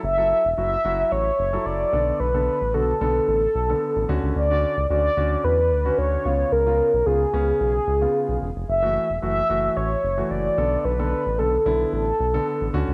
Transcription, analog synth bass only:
\new Staff \with { instrumentName = "Analog synth bass" } { \clef bass \time 4/4 \key b \minor \tempo 4 = 111 fis,,8. e,,16 fis,,8 fis,,8 a,,8 fis,,8 fis,,8 b,,8 | b,,8. a,,16 b,,8 b,,8 a,,8 b,,8 r16 a,,16 d,16 cis,16 | d,8. cis,16 d,8 d,8 e,8 d,8 d,8 cis,8 | cis,8. b,,16 cis,8 cis,8 b,,8 cis,8 r16 b,,16 e,,16 eis,,16 |
fis,,8. e,,16 fis,,8 fis,,8 a,,8 fis,,8 fis,,8 b,,8 | b,,8. a,,16 b,,8 b,,8 a,,8 b,,8 r16 a,,16 d,16 cis,16 | }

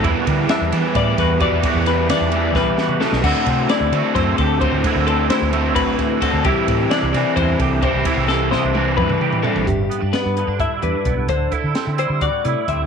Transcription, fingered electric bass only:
\new Staff \with { instrumentName = "Fingered electric bass" } { \clef bass \time 7/8 \key g \major \tempo 4 = 131 e,16 r16 d8 r16 e,16 e16 r16 a,8 e,8. e,16 | r16 e,8. e16 e,8. b,,8 r8. b,,16 | d,16 r16 c8 r16 d,16 d16 r16 fis,8 d,8. d,16 | r16 d,8. d16 d,8. a,,8 r8. d,16 |
c,16 r16 a,8 r16 c,16 c16 r16 e,8 c,8. c,16 | r16 c,8. c16 c,8. g,8 r8. a,,16 | g,,8 r16 g,16 r16 g,8 g,8 r16 e,16 r16 b,,8 | d,8 r16 d16 r16 d8 d8 r16 c16 r16 d,8 | }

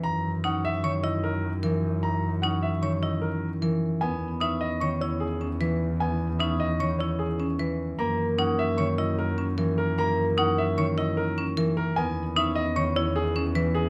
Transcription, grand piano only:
\new Staff \with { instrumentName = "Grand piano" } { \time 5/4 \key fis \mixolydian \tempo 4 = 151 ais''8 r8 fis''8 e''8 r8 dis''8 ais'8 r4. | ais''8 r8 fis''8 e''8 r8 dis''8 ais'8 r4. | gis''8 r8 e''8 dis''8 r8 cis''8 gis'8 r4. | gis''8 r8 e''8 dis''8 r8 cis''8 gis'8 r4. |
ais''8 r8 fis''8 e''8 r8 dis''8 ais'8 r4 ais'8 | ais''8 r8 fis''8 e''8 r8 dis''8 ais'8 r4 ais'8 | gis''8 r8 e''8 dis''8 r8 cis''8 gis'8 r4 gis'8 | }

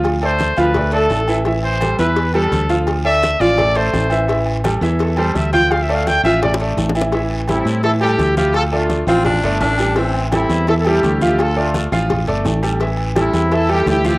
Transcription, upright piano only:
\new Staff \with { instrumentName = "Upright piano" } { \time 4/4 \key a \minor \tempo 4 = 169 <f f' f''>8 <a a' d''>4 <f f' f''>8 <a a' d''>8 <a a' d''>4 <e e' e''>8 | <e e' e''>4 <g g' a'>8 <e e' e''>4 <g g' a'>4 <f f' f''>8~ | <f f' f''>8 <a a' d''>4 <f f' f''>8 <a a' d''>8 <a a' d''>4 <e e' e''>8 | <e e' e''>4 <g g' a'>8 <e e' e''>4 <g g' a'>4 <f f' f''>8~ |
<f f' f''>8 <a a' d''>4 <f f' f''>8 <a a' d''>8 <a a' d''>4 <e e' e''>8 | <e e' e''>4 <g g' a'>4 <e e' e''>8 <g g' a'>4 <f f' f''>8~ | <f f' f''>8 <a a' d''>4 <f f' f''>4 <a a' d''>4 <g g' a'>8 | <e e' e''>4 <g g' a'>4 <e e' e''>8 <g g' a'>4 <f f' f''>8~ |
<f f' f''>8 <a a' d''>4 <f f' f''>4 <a a' d''>4 <g g' a'>8 | <e e' e''>4 <g g' a'>4 <e e' e''>8 <g g' a'>4 <f f' f''>8 | }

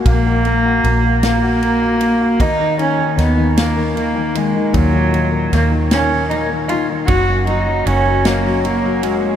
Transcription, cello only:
\new Staff \with { instrumentName = "Cello" } { \time 6/8 \key fis \major \tempo 4. = 51 ais4. ais4. | dis'8 cis'8 b8 ais8 ais8 gis8 | fis4 ais8 cis'8 dis'8 eis'8 | fis'8 dis'8 cis'8 ais8 ais8 gis8 | }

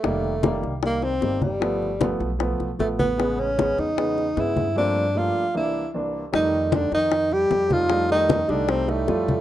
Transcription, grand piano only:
\new Staff \with { instrumentName = "Grand piano" } { \time 4/4 \key f \mixolydian \tempo 4 = 153 <ees g bes>8 r8 <ees g bes>8 r8 <ees g bes>8 r8 <ees g bes>8 r8 | <f a b>8 r8 <f a b>8 r8 <f a b>8 r8 <f a b>8 r8 | <cis gis b>8 r8 <cis gis b>8 r8 <cis gis b>8 r8 <cis gis b>8 r8 | <g, f a bes c'>8 r8 <g, f a bes d'>8 r8 <c, e bes d'>8 r8 <c, e bes d'>8 r8 |
<g a ees'>4. r2 <g a ees'>8 | <g a ees'>8 <g a ees'>8 r8 <g a ees'>8 <g a ees'>8 <g a ees'>8 <g a f'>8 r8 | }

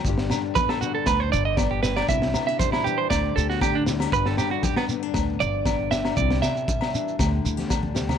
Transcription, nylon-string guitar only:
\new Staff \with { instrumentName = "Nylon-string guitar" } { \time 4/4 \key g \major \tempo 4 = 118 << { <d g'>8 d'8 b8 d'4 d'8 b8 d'8 | e'8 b16 d'16 g8 d'8 g'8 g'8 d'8 e'16 g'16 | g'8 d'4 b16 d'16 b8 d'8 b8 d'8 | e'8 d'8 g8 d'8 g'8 e'16 g'16 d'8 g'8 | } \\ { g,4. d4 g,4. | c4. e8 d4. g8 | g,4. d4 g,4. | c4. e8 d4. g8 | } >> }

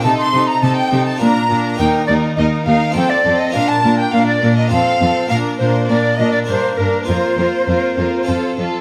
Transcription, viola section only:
\new Staff \with { instrumentName = "Viola section" } { \time 3/4 \key bes \lydian \tempo 4 = 102 ees'8 ees'8 ees'8 ees'8 d'8 d'8 | \key bes \major ees'8 ees'8 ees'8 ees'8 c'8 c'8 | d'8 d'8 d'8 d'8 c'8 c'8 | d'8 d'8 d'8 d'8 d'8 d'8 |
f'8 f'8 f'8 f'8 f'8 f'8 | }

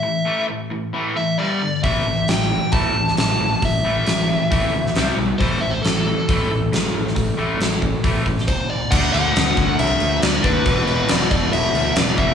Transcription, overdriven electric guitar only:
\new Staff \with { instrumentName = "Overdriven electric guitar" } { \clef bass \time 4/4 \key a \minor \tempo 4 = 136 <a, e>8 <a, e a>8 <a, e>8 <a, e>8 <a, e a>8 <a, e>8 <g, d g>8 <g, d>8 | <a, e a>8 <a, e>8 <a, e>8 <a, e>8 <a, e a>8 <a, e>8 <a, e>8 <a, e>8 | <a, e>8 <a, e a>8 <a, e>8 <a, e>8 <a, e a>8 <a, e>8 <c g c'>8 <c g>8 | <a, e a>8 <a, e>8 <a, e>8 <a, e>8 <a, e a>8 <a, e>8 <a, e>8 <a, e>8 |
<a, e>8 <a, e a>8 <a, e>8 <a, e>8 <a, e a>8 <a, e>8 r4 | <d a d'>2.~ <d a d'>8 <d a d'>8 | <e, b, e>2.~ <e, b, e>8 <e, b, e>8 | }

